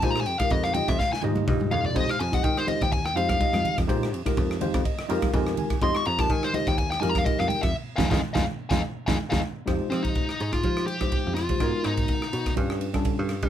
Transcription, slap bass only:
X:1
M:4/4
L:1/16
Q:"Swing 16ths" 1/4=124
K:Fm
V:1 name="Slap bass" clef=bass
B,,2 F,, z F,,3 F,, z2 A,,2 G,,2 F,,2 | F,, z F,,2 E,3 E,,3 F,,2 z F,, z F,, | B,,2 F,, z F,,3 F,, z2 F,, z F,,2 z2 | F,, z F,,2 E,3 E,,3 F,,2 z F,, z F,, |
z2 F,, F,, z F,, z2 F,, z2 F,, z F,, z2 | F,, z F,2 z2 A,,2 F,4- F, F,,2 E,, | A,, z A,,2 z2 _C,2 G,,4- G,, G,,2 G, |]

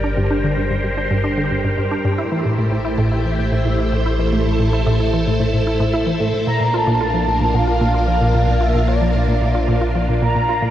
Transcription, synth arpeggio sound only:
X:1
M:4/4
L:1/16
Q:1/4=112
K:Aphr
V:1 name="Synth arpeggio sound" clef=bass
D G,, D D, G,, G,, G,, D G,, D D, G,, G,, G,, D G,, | E E, A,, A,, A,, E A,, E E, A,, A,, A,, E A,, E E, | A,, A,, A,, E A,, E E, A,, A,, A,, E A,, E E, A,, A,, | B,, B,, F B,, F F, B,, B,, B,, F B,, F F, B,, B,, B,, |
F B,, F F, B,, B,, B,, F B,, F F, B,, B,, B,, F B,, |]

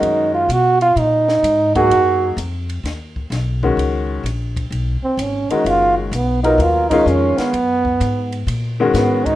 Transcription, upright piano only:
X:1
M:4/4
L:1/8
Q:"Swing" 1/4=128
K:Dbmix
V:1 name="Upright piano"
[E,A,DG]2 z4 z [G,B,EA]- | [G,B,EA]2 z4 z [E,A,DG]- | [E,A,DG]2 z4 z [E,A,DG]- | [E,A,DG]2 z [G,CFB]2 [E,A,DF]3 |
z4 z [E,A,DG]3 |]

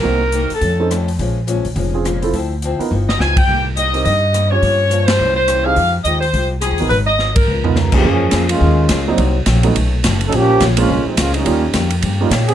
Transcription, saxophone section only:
X:1
M:4/4
L:1/8
Q:"Swing" 1/4=210
K:Cphr
V:1 name="Saxophone section"
B3 =A3 z2 | z8 | z4 z ^d a g- | g z e2 e3 d- |
d3 c2 c2 f- | f z e c2 z A2 | _c e2 B3 z2 | z8 |
z8 | z8 | z8 |]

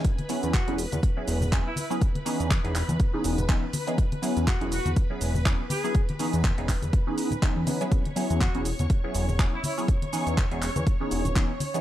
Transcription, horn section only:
X:1
M:4/4
L:1/16
Q:"Swing 16ths" 1/4=122
K:E
V:1 name="Horn section"
z4 F z8 E E z | z16 | z4 F z F z6 z G2 | z16 |
z4 F z8 E E z | z16 |]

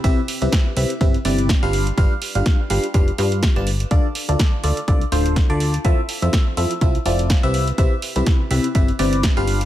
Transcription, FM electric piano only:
X:1
M:4/4
L:1/16
Q:"Swing 16ths" 1/4=124
K:C
V:1 name="FM electric piano"
[C,CEGBe] z2 [C,CEGBe]2 z [C,CEGBe] z [C,CEGBe] z [C,CEGBd]2 z [G,DFGBf]2 z | [G,DFGBf] z2 [G,DFGBf]2 z [G,DFGBf] z [G,DFGBf] z [G,DFGBf]2 z [G,DFGBa] z2 | [D,FAd] z2 [D,FAd]2 z [D,FAd] z [D,FAd] z [D,FAc]2 z [D,FAd]2 z | [F,CEFAe] z2 [F,CEFAe]2 z [F,CEFAe] z [F,CEFAe] z [F,CEFAd]2 z [C,CEGBe]2 z |
[C,CEGBe] z2 [C,CEGBe]2 z [C,CEGBe] z [C,CEGBe] z [C,CEGBd]2 z [G,DFGBf]2 z |]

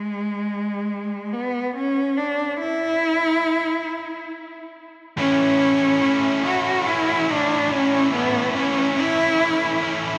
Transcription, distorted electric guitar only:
X:1
M:6/8
L:1/8
Q:3/8=47
K:A
V:1 name="Distorted electric guitar"
z6 | z6 | [A,,E,A,CE] [A,CE] [E,A,CE] [A,CE] [E,A,CE] [A,CE] | [A,,E,A,CE] [A,CE] [E,A,CE] [A,CE] [E,A,CE] [A,CE] |]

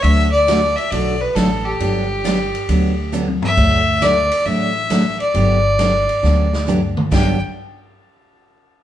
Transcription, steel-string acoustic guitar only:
X:1
M:4/4
L:1/8
Q:"Swing" 1/4=135
K:G
V:1 name="Steel-string acoustic guitar"
[D,F,A,DF] z [D,F,A,DF] z [D,F,A,DF] z [D,F,A,DF] z | [D,F,B,DG] z [D,F,B,DG] z [D,F,B,DG] z [D,F,B,DG] z | [D,F,A,DF] z [D,F,A,DF] z [D,F,A,DF] z [D,F,A,DF] z | [D,F,B,DG] z [D,F,B,DG] z [D,F,B,DG] z [D,F,B,DG] z |
[G,,D,F,B,DG] z6 z |]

